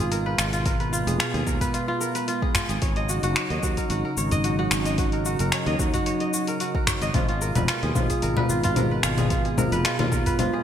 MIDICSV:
0, 0, Header, 1, 6, 480
1, 0, Start_track
1, 0, Tempo, 540541
1, 585, Time_signature, 4, 2, 24, 8
1, 9441, End_track
2, 0, Start_track
2, 0, Title_t, "Kora"
2, 0, Program_c, 0, 46
2, 0, Note_on_c, 0, 65, 73
2, 0, Note_on_c, 0, 68, 77
2, 0, Note_on_c, 0, 71, 76
2, 102, Note_on_c, 0, 70, 73
2, 155, Note_off_c, 0, 71, 0
2, 231, Note_on_c, 0, 71, 88
2, 284, Note_off_c, 0, 70, 0
2, 339, Note_off_c, 0, 65, 0
2, 343, Note_on_c, 0, 65, 74
2, 466, Note_off_c, 0, 65, 0
2, 470, Note_on_c, 0, 65, 91
2, 583, Note_on_c, 0, 70, 80
2, 636, Note_off_c, 0, 71, 0
2, 710, Note_on_c, 0, 71, 72
2, 764, Note_off_c, 0, 70, 0
2, 819, Note_off_c, 0, 65, 0
2, 823, Note_on_c, 0, 65, 79
2, 947, Note_off_c, 0, 68, 0
2, 951, Note_on_c, 0, 68, 69
2, 1058, Note_off_c, 0, 65, 0
2, 1061, Note_on_c, 0, 65, 81
2, 1188, Note_off_c, 0, 68, 0
2, 1191, Note_on_c, 0, 68, 73
2, 1303, Note_on_c, 0, 70, 71
2, 1356, Note_off_c, 0, 71, 0
2, 1430, Note_on_c, 0, 71, 101
2, 1483, Note_off_c, 0, 70, 0
2, 1541, Note_off_c, 0, 65, 0
2, 1544, Note_on_c, 0, 65, 77
2, 1667, Note_off_c, 0, 65, 0
2, 1671, Note_on_c, 0, 65, 92
2, 1783, Note_on_c, 0, 70, 71
2, 1836, Note_off_c, 0, 71, 0
2, 1910, Note_on_c, 0, 71, 76
2, 1963, Note_off_c, 0, 70, 0
2, 2020, Note_off_c, 0, 65, 0
2, 2024, Note_on_c, 0, 65, 78
2, 2150, Note_off_c, 0, 68, 0
2, 2153, Note_on_c, 0, 68, 74
2, 2263, Note_off_c, 0, 65, 0
2, 2266, Note_on_c, 0, 65, 74
2, 2391, Note_off_c, 0, 68, 0
2, 2394, Note_on_c, 0, 68, 72
2, 2505, Note_on_c, 0, 73, 76
2, 2632, Note_on_c, 0, 75, 101
2, 2747, Note_on_c, 0, 66, 72
2, 2800, Note_off_c, 0, 65, 0
2, 2870, Note_off_c, 0, 66, 0
2, 2873, Note_on_c, 0, 66, 96
2, 2982, Note_off_c, 0, 73, 0
2, 2985, Note_on_c, 0, 73, 80
2, 3001, Note_off_c, 0, 71, 0
2, 3111, Note_off_c, 0, 75, 0
2, 3114, Note_on_c, 0, 75, 77
2, 3223, Note_off_c, 0, 66, 0
2, 3227, Note_on_c, 0, 66, 75
2, 3354, Note_on_c, 0, 70, 80
2, 3462, Note_off_c, 0, 66, 0
2, 3465, Note_on_c, 0, 66, 86
2, 3592, Note_off_c, 0, 70, 0
2, 3595, Note_on_c, 0, 70, 68
2, 3606, Note_off_c, 0, 68, 0
2, 3705, Note_off_c, 0, 73, 0
2, 3709, Note_on_c, 0, 73, 68
2, 3830, Note_off_c, 0, 75, 0
2, 3834, Note_on_c, 0, 75, 98
2, 3942, Note_off_c, 0, 66, 0
2, 3945, Note_on_c, 0, 66, 77
2, 4071, Note_off_c, 0, 66, 0
2, 4074, Note_on_c, 0, 66, 94
2, 4184, Note_off_c, 0, 73, 0
2, 4187, Note_on_c, 0, 73, 73
2, 4310, Note_off_c, 0, 75, 0
2, 4314, Note_on_c, 0, 75, 67
2, 4424, Note_off_c, 0, 66, 0
2, 4428, Note_on_c, 0, 66, 79
2, 4551, Note_off_c, 0, 70, 0
2, 4555, Note_on_c, 0, 70, 73
2, 4665, Note_off_c, 0, 66, 0
2, 4669, Note_on_c, 0, 66, 77
2, 4793, Note_off_c, 0, 70, 0
2, 4797, Note_on_c, 0, 70, 72
2, 4904, Note_off_c, 0, 73, 0
2, 4908, Note_on_c, 0, 73, 76
2, 5030, Note_off_c, 0, 75, 0
2, 5034, Note_on_c, 0, 75, 89
2, 5141, Note_off_c, 0, 66, 0
2, 5144, Note_on_c, 0, 66, 67
2, 5270, Note_off_c, 0, 66, 0
2, 5274, Note_on_c, 0, 66, 106
2, 5380, Note_off_c, 0, 73, 0
2, 5384, Note_on_c, 0, 73, 77
2, 5508, Note_off_c, 0, 75, 0
2, 5512, Note_on_c, 0, 75, 67
2, 5623, Note_off_c, 0, 66, 0
2, 5626, Note_on_c, 0, 66, 65
2, 5751, Note_off_c, 0, 70, 0
2, 5755, Note_on_c, 0, 70, 71
2, 5862, Note_off_c, 0, 66, 0
2, 5866, Note_on_c, 0, 66, 76
2, 5992, Note_off_c, 0, 70, 0
2, 5995, Note_on_c, 0, 70, 70
2, 6103, Note_off_c, 0, 73, 0
2, 6106, Note_on_c, 0, 73, 73
2, 6231, Note_off_c, 0, 75, 0
2, 6235, Note_on_c, 0, 75, 90
2, 6344, Note_on_c, 0, 65, 75
2, 6397, Note_off_c, 0, 66, 0
2, 6468, Note_off_c, 0, 65, 0
2, 6472, Note_on_c, 0, 65, 95
2, 6581, Note_off_c, 0, 70, 0
2, 6585, Note_on_c, 0, 70, 72
2, 6713, Note_on_c, 0, 71, 68
2, 6766, Note_off_c, 0, 70, 0
2, 6820, Note_off_c, 0, 65, 0
2, 6823, Note_on_c, 0, 65, 78
2, 6952, Note_on_c, 0, 68, 74
2, 7060, Note_off_c, 0, 65, 0
2, 7064, Note_on_c, 0, 65, 73
2, 7125, Note_off_c, 0, 73, 0
2, 7185, Note_off_c, 0, 75, 0
2, 7188, Note_off_c, 0, 68, 0
2, 7192, Note_on_c, 0, 68, 74
2, 7305, Note_on_c, 0, 70, 78
2, 7358, Note_off_c, 0, 71, 0
2, 7433, Note_on_c, 0, 71, 95
2, 7486, Note_off_c, 0, 70, 0
2, 7543, Note_off_c, 0, 65, 0
2, 7546, Note_on_c, 0, 65, 68
2, 7670, Note_off_c, 0, 65, 0
2, 7674, Note_on_c, 0, 65, 101
2, 7788, Note_on_c, 0, 70, 75
2, 7841, Note_off_c, 0, 71, 0
2, 7915, Note_on_c, 0, 71, 70
2, 7968, Note_off_c, 0, 70, 0
2, 8024, Note_off_c, 0, 65, 0
2, 8027, Note_on_c, 0, 65, 78
2, 8149, Note_off_c, 0, 68, 0
2, 8152, Note_on_c, 0, 68, 66
2, 8260, Note_off_c, 0, 65, 0
2, 8263, Note_on_c, 0, 65, 77
2, 8389, Note_off_c, 0, 68, 0
2, 8393, Note_on_c, 0, 68, 70
2, 8506, Note_on_c, 0, 70, 79
2, 8559, Note_off_c, 0, 71, 0
2, 8634, Note_on_c, 0, 71, 96
2, 8687, Note_off_c, 0, 70, 0
2, 8742, Note_off_c, 0, 65, 0
2, 8745, Note_on_c, 0, 65, 76
2, 8871, Note_off_c, 0, 65, 0
2, 8875, Note_on_c, 0, 65, 98
2, 8986, Note_on_c, 0, 70, 71
2, 9039, Note_off_c, 0, 71, 0
2, 9115, Note_on_c, 0, 71, 78
2, 9168, Note_off_c, 0, 70, 0
2, 9224, Note_off_c, 0, 65, 0
2, 9228, Note_on_c, 0, 65, 85
2, 9351, Note_off_c, 0, 68, 0
2, 9354, Note_on_c, 0, 68, 75
2, 9441, Note_off_c, 0, 65, 0
2, 9441, Note_off_c, 0, 68, 0
2, 9441, Note_off_c, 0, 71, 0
2, 9441, End_track
3, 0, Start_track
3, 0, Title_t, "Analog synth pad"
3, 0, Program_c, 1, 89
3, 0, Note_on_c, 1, 47, 82
3, 0, Note_on_c, 1, 56, 75
3, 0, Note_on_c, 1, 65, 97
3, 582, Note_on_c, 1, 59, 75
3, 2469, Note_off_c, 1, 47, 0
3, 2469, Note_off_c, 1, 56, 0
3, 2469, Note_off_c, 1, 65, 0
3, 2484, Note_off_c, 1, 59, 0
3, 2507, Note_on_c, 1, 49, 86
3, 2507, Note_on_c, 1, 54, 77
3, 2507, Note_on_c, 1, 63, 90
3, 6311, Note_off_c, 1, 49, 0
3, 6311, Note_off_c, 1, 54, 0
3, 6311, Note_off_c, 1, 63, 0
3, 6341, Note_on_c, 1, 47, 89
3, 6342, Note_on_c, 1, 65, 92
3, 6343, Note_on_c, 1, 56, 78
3, 8265, Note_on_c, 1, 59, 78
3, 9441, Note_off_c, 1, 47, 0
3, 9441, Note_off_c, 1, 56, 0
3, 9441, Note_off_c, 1, 59, 0
3, 9441, Note_off_c, 1, 65, 0
3, 9441, End_track
4, 0, Start_track
4, 0, Title_t, "Fretless electric bass"
4, 0, Program_c, 2, 35
4, 0, Note_on_c, 2, 32, 72
4, 312, Note_off_c, 2, 32, 0
4, 344, Note_on_c, 2, 32, 75
4, 916, Note_off_c, 2, 32, 0
4, 950, Note_on_c, 2, 29, 90
4, 1044, Note_off_c, 2, 29, 0
4, 1190, Note_on_c, 2, 39, 89
4, 1284, Note_off_c, 2, 39, 0
4, 1304, Note_on_c, 2, 39, 84
4, 1409, Note_off_c, 2, 39, 0
4, 2391, Note_on_c, 2, 32, 80
4, 2484, Note_off_c, 2, 32, 0
4, 2504, Note_on_c, 2, 32, 90
4, 2836, Note_off_c, 2, 32, 0
4, 2871, Note_on_c, 2, 30, 91
4, 2964, Note_off_c, 2, 30, 0
4, 3111, Note_on_c, 2, 39, 88
4, 3204, Note_off_c, 2, 39, 0
4, 3223, Note_on_c, 2, 39, 86
4, 3329, Note_off_c, 2, 39, 0
4, 3464, Note_on_c, 2, 32, 90
4, 3569, Note_off_c, 2, 32, 0
4, 3703, Note_on_c, 2, 32, 72
4, 4152, Note_off_c, 2, 32, 0
4, 4184, Note_on_c, 2, 32, 72
4, 4756, Note_off_c, 2, 32, 0
4, 4791, Note_on_c, 2, 30, 80
4, 4884, Note_off_c, 2, 30, 0
4, 5032, Note_on_c, 2, 39, 91
4, 5124, Note_off_c, 2, 39, 0
4, 5143, Note_on_c, 2, 39, 85
4, 5249, Note_off_c, 2, 39, 0
4, 6230, Note_on_c, 2, 32, 74
4, 6324, Note_off_c, 2, 32, 0
4, 6343, Note_on_c, 2, 32, 89
4, 6675, Note_off_c, 2, 32, 0
4, 6712, Note_on_c, 2, 29, 89
4, 6805, Note_off_c, 2, 29, 0
4, 6953, Note_on_c, 2, 39, 91
4, 7045, Note_off_c, 2, 39, 0
4, 7064, Note_on_c, 2, 39, 86
4, 7169, Note_off_c, 2, 39, 0
4, 7304, Note_on_c, 2, 32, 90
4, 7409, Note_off_c, 2, 32, 0
4, 7544, Note_on_c, 2, 32, 69
4, 7992, Note_off_c, 2, 32, 0
4, 8026, Note_on_c, 2, 32, 72
4, 8597, Note_off_c, 2, 32, 0
4, 8631, Note_on_c, 2, 29, 85
4, 8724, Note_off_c, 2, 29, 0
4, 8873, Note_on_c, 2, 39, 97
4, 8965, Note_off_c, 2, 39, 0
4, 8986, Note_on_c, 2, 39, 80
4, 9090, Note_off_c, 2, 39, 0
4, 9441, End_track
5, 0, Start_track
5, 0, Title_t, "Udu"
5, 1434, Note_on_c, 9, 64, 81
5, 1522, Note_off_c, 9, 64, 0
5, 2263, Note_on_c, 9, 64, 86
5, 2352, Note_off_c, 9, 64, 0
5, 3832, Note_on_c, 9, 64, 98
5, 3921, Note_off_c, 9, 64, 0
5, 4786, Note_on_c, 9, 64, 79
5, 4875, Note_off_c, 9, 64, 0
5, 5272, Note_on_c, 9, 64, 75
5, 5361, Note_off_c, 9, 64, 0
5, 6106, Note_on_c, 9, 64, 83
5, 6195, Note_off_c, 9, 64, 0
5, 7682, Note_on_c, 9, 64, 83
5, 7771, Note_off_c, 9, 64, 0
5, 9117, Note_on_c, 9, 64, 78
5, 9206, Note_off_c, 9, 64, 0
5, 9441, End_track
6, 0, Start_track
6, 0, Title_t, "Drums"
6, 103, Note_on_c, 9, 46, 52
6, 106, Note_on_c, 9, 69, 30
6, 192, Note_off_c, 9, 46, 0
6, 194, Note_off_c, 9, 69, 0
6, 342, Note_on_c, 9, 26, 76
6, 344, Note_on_c, 9, 69, 82
6, 431, Note_off_c, 9, 26, 0
6, 433, Note_off_c, 9, 69, 0
6, 470, Note_on_c, 9, 46, 38
6, 473, Note_on_c, 9, 69, 40
6, 559, Note_off_c, 9, 46, 0
6, 561, Note_off_c, 9, 69, 0
6, 582, Note_on_c, 9, 46, 53
6, 583, Note_on_c, 9, 36, 116
6, 585, Note_on_c, 9, 69, 32
6, 671, Note_off_c, 9, 46, 0
6, 672, Note_off_c, 9, 36, 0
6, 674, Note_off_c, 9, 69, 0
6, 711, Note_on_c, 9, 46, 28
6, 800, Note_off_c, 9, 46, 0
6, 828, Note_on_c, 9, 69, 78
6, 917, Note_off_c, 9, 69, 0
6, 953, Note_on_c, 9, 46, 42
6, 956, Note_on_c, 9, 69, 44
6, 1042, Note_off_c, 9, 46, 0
6, 1045, Note_off_c, 9, 69, 0
6, 1065, Note_on_c, 9, 26, 78
6, 1065, Note_on_c, 9, 46, 52
6, 1068, Note_on_c, 9, 69, 31
6, 1154, Note_off_c, 9, 26, 0
6, 1154, Note_off_c, 9, 46, 0
6, 1157, Note_off_c, 9, 69, 0
6, 1192, Note_on_c, 9, 46, 30
6, 1281, Note_off_c, 9, 46, 0
6, 1304, Note_on_c, 9, 36, 109
6, 1306, Note_on_c, 9, 69, 68
6, 1393, Note_off_c, 9, 36, 0
6, 1394, Note_off_c, 9, 69, 0
6, 1432, Note_on_c, 9, 36, 67
6, 1432, Note_on_c, 9, 46, 44
6, 1435, Note_on_c, 9, 69, 45
6, 1520, Note_off_c, 9, 36, 0
6, 1521, Note_off_c, 9, 46, 0
6, 1524, Note_off_c, 9, 69, 0
6, 1545, Note_on_c, 9, 46, 49
6, 1548, Note_on_c, 9, 69, 32
6, 1634, Note_off_c, 9, 46, 0
6, 1637, Note_off_c, 9, 69, 0
6, 1785, Note_on_c, 9, 69, 76
6, 1874, Note_off_c, 9, 69, 0
6, 1910, Note_on_c, 9, 46, 44
6, 1912, Note_on_c, 9, 69, 43
6, 1998, Note_off_c, 9, 46, 0
6, 2001, Note_off_c, 9, 69, 0
6, 2024, Note_on_c, 9, 46, 49
6, 2027, Note_on_c, 9, 69, 32
6, 2113, Note_off_c, 9, 46, 0
6, 2115, Note_off_c, 9, 69, 0
6, 2152, Note_on_c, 9, 36, 109
6, 2241, Note_off_c, 9, 36, 0
6, 2262, Note_on_c, 9, 26, 83
6, 2265, Note_on_c, 9, 69, 78
6, 2351, Note_off_c, 9, 26, 0
6, 2354, Note_off_c, 9, 69, 0
6, 2390, Note_on_c, 9, 46, 41
6, 2393, Note_on_c, 9, 69, 44
6, 2479, Note_off_c, 9, 46, 0
6, 2482, Note_off_c, 9, 69, 0
6, 2502, Note_on_c, 9, 46, 51
6, 2504, Note_on_c, 9, 36, 121
6, 2504, Note_on_c, 9, 69, 33
6, 2590, Note_off_c, 9, 46, 0
6, 2593, Note_off_c, 9, 36, 0
6, 2593, Note_off_c, 9, 69, 0
6, 2629, Note_on_c, 9, 46, 29
6, 2718, Note_off_c, 9, 46, 0
6, 2744, Note_on_c, 9, 69, 80
6, 2832, Note_off_c, 9, 69, 0
6, 2869, Note_on_c, 9, 46, 40
6, 2872, Note_on_c, 9, 69, 41
6, 2958, Note_off_c, 9, 46, 0
6, 2961, Note_off_c, 9, 69, 0
6, 2983, Note_on_c, 9, 26, 78
6, 2983, Note_on_c, 9, 46, 49
6, 2985, Note_on_c, 9, 69, 32
6, 3071, Note_off_c, 9, 26, 0
6, 3071, Note_off_c, 9, 46, 0
6, 3074, Note_off_c, 9, 69, 0
6, 3111, Note_on_c, 9, 46, 27
6, 3199, Note_off_c, 9, 46, 0
6, 3224, Note_on_c, 9, 36, 103
6, 3224, Note_on_c, 9, 69, 77
6, 3313, Note_off_c, 9, 36, 0
6, 3313, Note_off_c, 9, 69, 0
6, 3350, Note_on_c, 9, 46, 42
6, 3352, Note_on_c, 9, 36, 65
6, 3353, Note_on_c, 9, 69, 45
6, 3439, Note_off_c, 9, 46, 0
6, 3441, Note_off_c, 9, 36, 0
6, 3441, Note_off_c, 9, 69, 0
6, 3462, Note_on_c, 9, 46, 49
6, 3465, Note_on_c, 9, 69, 32
6, 3551, Note_off_c, 9, 46, 0
6, 3553, Note_off_c, 9, 69, 0
6, 3705, Note_on_c, 9, 69, 78
6, 3794, Note_off_c, 9, 69, 0
6, 3831, Note_on_c, 9, 46, 38
6, 3834, Note_on_c, 9, 69, 46
6, 3920, Note_off_c, 9, 46, 0
6, 3923, Note_off_c, 9, 69, 0
6, 3943, Note_on_c, 9, 46, 50
6, 3946, Note_on_c, 9, 69, 32
6, 4032, Note_off_c, 9, 46, 0
6, 4035, Note_off_c, 9, 69, 0
6, 4182, Note_on_c, 9, 26, 74
6, 4185, Note_on_c, 9, 69, 87
6, 4271, Note_off_c, 9, 26, 0
6, 4274, Note_off_c, 9, 69, 0
6, 4311, Note_on_c, 9, 46, 39
6, 4314, Note_on_c, 9, 69, 42
6, 4400, Note_off_c, 9, 46, 0
6, 4403, Note_off_c, 9, 69, 0
6, 4422, Note_on_c, 9, 46, 50
6, 4424, Note_on_c, 9, 36, 115
6, 4425, Note_on_c, 9, 69, 33
6, 4511, Note_off_c, 9, 46, 0
6, 4513, Note_off_c, 9, 36, 0
6, 4514, Note_off_c, 9, 69, 0
6, 4549, Note_on_c, 9, 46, 29
6, 4638, Note_off_c, 9, 46, 0
6, 4664, Note_on_c, 9, 69, 80
6, 4753, Note_off_c, 9, 69, 0
6, 4789, Note_on_c, 9, 46, 38
6, 4791, Note_on_c, 9, 69, 43
6, 4878, Note_off_c, 9, 46, 0
6, 4880, Note_off_c, 9, 69, 0
6, 4902, Note_on_c, 9, 26, 71
6, 4902, Note_on_c, 9, 46, 48
6, 4905, Note_on_c, 9, 69, 33
6, 4991, Note_off_c, 9, 26, 0
6, 4991, Note_off_c, 9, 46, 0
6, 4994, Note_off_c, 9, 69, 0
6, 5030, Note_on_c, 9, 46, 29
6, 5119, Note_off_c, 9, 46, 0
6, 5144, Note_on_c, 9, 36, 112
6, 5145, Note_on_c, 9, 69, 79
6, 5233, Note_off_c, 9, 36, 0
6, 5234, Note_off_c, 9, 69, 0
6, 5271, Note_on_c, 9, 36, 63
6, 5271, Note_on_c, 9, 46, 41
6, 5274, Note_on_c, 9, 69, 43
6, 5360, Note_off_c, 9, 36, 0
6, 5360, Note_off_c, 9, 46, 0
6, 5363, Note_off_c, 9, 69, 0
6, 5383, Note_on_c, 9, 46, 51
6, 5385, Note_on_c, 9, 69, 32
6, 5471, Note_off_c, 9, 46, 0
6, 5474, Note_off_c, 9, 69, 0
6, 5509, Note_on_c, 9, 46, 32
6, 5598, Note_off_c, 9, 46, 0
6, 5624, Note_on_c, 9, 69, 81
6, 5713, Note_off_c, 9, 69, 0
6, 5749, Note_on_c, 9, 46, 39
6, 5752, Note_on_c, 9, 69, 41
6, 5838, Note_off_c, 9, 46, 0
6, 5840, Note_off_c, 9, 69, 0
6, 5862, Note_on_c, 9, 46, 49
6, 5865, Note_on_c, 9, 69, 33
6, 5951, Note_off_c, 9, 46, 0
6, 5954, Note_off_c, 9, 69, 0
6, 5991, Note_on_c, 9, 36, 105
6, 6079, Note_off_c, 9, 36, 0
6, 6102, Note_on_c, 9, 26, 75
6, 6103, Note_on_c, 9, 36, 60
6, 6104, Note_on_c, 9, 69, 78
6, 6190, Note_off_c, 9, 26, 0
6, 6192, Note_off_c, 9, 36, 0
6, 6193, Note_off_c, 9, 69, 0
6, 6230, Note_on_c, 9, 46, 36
6, 6232, Note_on_c, 9, 69, 43
6, 6318, Note_off_c, 9, 46, 0
6, 6321, Note_off_c, 9, 69, 0
6, 6342, Note_on_c, 9, 46, 52
6, 6342, Note_on_c, 9, 64, 75
6, 6344, Note_on_c, 9, 36, 111
6, 6344, Note_on_c, 9, 69, 29
6, 6430, Note_off_c, 9, 46, 0
6, 6430, Note_off_c, 9, 64, 0
6, 6432, Note_off_c, 9, 36, 0
6, 6433, Note_off_c, 9, 69, 0
6, 6470, Note_on_c, 9, 46, 27
6, 6558, Note_off_c, 9, 46, 0
6, 6583, Note_on_c, 9, 69, 76
6, 6672, Note_off_c, 9, 69, 0
6, 6708, Note_on_c, 9, 46, 40
6, 6708, Note_on_c, 9, 64, 70
6, 6711, Note_on_c, 9, 69, 43
6, 6797, Note_off_c, 9, 46, 0
6, 6797, Note_off_c, 9, 64, 0
6, 6800, Note_off_c, 9, 69, 0
6, 6822, Note_on_c, 9, 26, 68
6, 6822, Note_on_c, 9, 46, 50
6, 6825, Note_on_c, 9, 69, 32
6, 6911, Note_off_c, 9, 26, 0
6, 6911, Note_off_c, 9, 46, 0
6, 6914, Note_off_c, 9, 69, 0
6, 6951, Note_on_c, 9, 46, 27
6, 7040, Note_off_c, 9, 46, 0
6, 7062, Note_on_c, 9, 64, 70
6, 7064, Note_on_c, 9, 36, 104
6, 7065, Note_on_c, 9, 69, 70
6, 7151, Note_off_c, 9, 64, 0
6, 7153, Note_off_c, 9, 36, 0
6, 7154, Note_off_c, 9, 69, 0
6, 7191, Note_on_c, 9, 36, 60
6, 7191, Note_on_c, 9, 46, 41
6, 7193, Note_on_c, 9, 69, 46
6, 7279, Note_off_c, 9, 46, 0
6, 7280, Note_off_c, 9, 36, 0
6, 7282, Note_off_c, 9, 69, 0
6, 7302, Note_on_c, 9, 46, 49
6, 7305, Note_on_c, 9, 69, 31
6, 7391, Note_off_c, 9, 46, 0
6, 7393, Note_off_c, 9, 69, 0
6, 7429, Note_on_c, 9, 64, 85
6, 7518, Note_off_c, 9, 64, 0
6, 7543, Note_on_c, 9, 69, 74
6, 7631, Note_off_c, 9, 69, 0
6, 7668, Note_on_c, 9, 46, 39
6, 7671, Note_on_c, 9, 69, 43
6, 7757, Note_off_c, 9, 46, 0
6, 7759, Note_off_c, 9, 69, 0
6, 7781, Note_on_c, 9, 46, 47
6, 7781, Note_on_c, 9, 64, 71
6, 7783, Note_on_c, 9, 69, 32
6, 7869, Note_off_c, 9, 46, 0
6, 7869, Note_off_c, 9, 64, 0
6, 7872, Note_off_c, 9, 69, 0
6, 8020, Note_on_c, 9, 26, 74
6, 8023, Note_on_c, 9, 69, 74
6, 8109, Note_off_c, 9, 26, 0
6, 8112, Note_off_c, 9, 69, 0
6, 8149, Note_on_c, 9, 46, 35
6, 8149, Note_on_c, 9, 64, 71
6, 8152, Note_on_c, 9, 69, 38
6, 8238, Note_off_c, 9, 46, 0
6, 8238, Note_off_c, 9, 64, 0
6, 8241, Note_off_c, 9, 69, 0
6, 8262, Note_on_c, 9, 46, 54
6, 8264, Note_on_c, 9, 36, 108
6, 8264, Note_on_c, 9, 69, 30
6, 8350, Note_off_c, 9, 46, 0
6, 8353, Note_off_c, 9, 36, 0
6, 8353, Note_off_c, 9, 69, 0
6, 8392, Note_on_c, 9, 46, 29
6, 8481, Note_off_c, 9, 46, 0
6, 8505, Note_on_c, 9, 64, 85
6, 8508, Note_on_c, 9, 69, 78
6, 8594, Note_off_c, 9, 64, 0
6, 8596, Note_off_c, 9, 69, 0
6, 8633, Note_on_c, 9, 46, 38
6, 8636, Note_on_c, 9, 69, 42
6, 8722, Note_off_c, 9, 46, 0
6, 8725, Note_off_c, 9, 69, 0
6, 8745, Note_on_c, 9, 26, 71
6, 8745, Note_on_c, 9, 46, 52
6, 8748, Note_on_c, 9, 69, 30
6, 8834, Note_off_c, 9, 26, 0
6, 8834, Note_off_c, 9, 46, 0
6, 8837, Note_off_c, 9, 69, 0
6, 8872, Note_on_c, 9, 46, 29
6, 8872, Note_on_c, 9, 64, 80
6, 8961, Note_off_c, 9, 46, 0
6, 8961, Note_off_c, 9, 64, 0
6, 8985, Note_on_c, 9, 36, 97
6, 8987, Note_on_c, 9, 69, 72
6, 9074, Note_off_c, 9, 36, 0
6, 9076, Note_off_c, 9, 69, 0
6, 9113, Note_on_c, 9, 36, 62
6, 9113, Note_on_c, 9, 46, 43
6, 9116, Note_on_c, 9, 69, 41
6, 9202, Note_off_c, 9, 36, 0
6, 9202, Note_off_c, 9, 46, 0
6, 9205, Note_off_c, 9, 69, 0
6, 9225, Note_on_c, 9, 46, 51
6, 9225, Note_on_c, 9, 64, 75
6, 9228, Note_on_c, 9, 69, 29
6, 9314, Note_off_c, 9, 46, 0
6, 9314, Note_off_c, 9, 64, 0
6, 9317, Note_off_c, 9, 69, 0
6, 9441, End_track
0, 0, End_of_file